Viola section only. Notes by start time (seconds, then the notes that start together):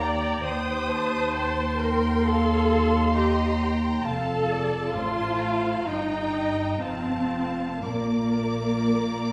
0.00 D5
0.45 C5
1.78 A#4
2.24 A4
3.15 G4
4.06 A4
4.96 F4
5.87 D#4
6.81 C4
7.82 A#3